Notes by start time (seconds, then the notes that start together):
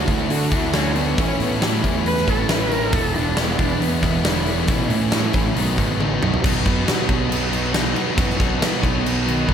Already playing: D3 A3 D4 F#4
0.08 D2 E4, kick, open hi-hat
0.29 D3 F#4, open hi-hat
0.51 D2 A3 D4 E4 F#4, kick, open hi-hat
0.73 D3 A3 C#4 D4 F#4, snare, open hi-hat
0.95 A3 B3 D4 F#4, open hi-hat
1.17 A1 A2 E3 A3 C#4 E4, kick, open hi-hat
1.39 A2 A3 B3 C#4 E4, open hi-hat
1.60 A2 E3 A3 C#4 E4, snare, open hi-hat
1.65 A3
1.84 E2, kick, open hi-hat
2.06 B4, open hi-hat
2.17 snare
2.26 A1 A3 C#4 E4 A4, kick, open hi-hat
2.47 A2 E3 A3 C#4 E4 B4, snare, open hi-hat
2.69 A3 C#4 E4 A#4, open hi-hat
2.92 E1 E3 G#3 B3 E4 A4, kick, open hi-hat
3.13 G#3 B3 D4 E4, open hi-hat
3.35 E3 G#3 B3 E4, snare, open hi-hat
3.59 E1 D4, kick, open hi-hat
3.80 E2 B3, open hi-hat
4.02 E1 E3 G#3 B3 E4, kick, open hi-hat
4.24 D3 E3 G#3 B3 E4, snare, open hi-hat
4.45 G#3 B3 E4, open hi-hat
4.50 E3
4.67 A1 A2 E3 A3 C#4 E4, kick, open hi-hat
4.72 B2
4.88 A2 A3 C#4 E4, open hi-hat
4.95 A2
5.11 A2 E3 A3 C#4 E4, snare, open hi-hat
5.33 A1, kick, open hi-hat
5.55 B1 B2 D#3 F#3 B3 D#4, open hi-hat
5.77 G#1 F#3 B3 D#4, kick, open hi-hat
5.99 A1 B2 D#3 F#3 B3 D#4, high tom
6.21 B1 B3 D#4, mid tom
6.25 F#3
6.34 floor tom
6.44 B1 B2 F#3 B3 D#4, kick, crash
6.66 F#2 B2 F#3 B3 D#4, kick, crash
6.87 B2 F#3 B3 D#4, snare, crash
7.08 B1 B2 F#3 B3 D#4, kick, crash
7.30 B2 F#3 B3 D#4, crash
7.51 B2 F#3 B3 D#4, crash
7.74 B2 F#3 B3 D#4, snare, crash
7.94 B2 F#3 B3 D#4, crash
8.15 F#2 B2 F#3 B3 D#4, kick, crash
8.30 snare
8.36 B1 B2 F#3 B3 D#4, kick
8.41 crash
8.57 B2 F#3 B3 D#4
8.62 snare, crash
8.80 B1 B2 F#3 B3 D#4, kick
8.84 crash
9.01 B2 F#3 B3 D#4
9.06 crash
9.23 B2 D#3 F#3 B3 D#4
9.28 crash
9.46 B1 B2 F#3 B3 D#4, kick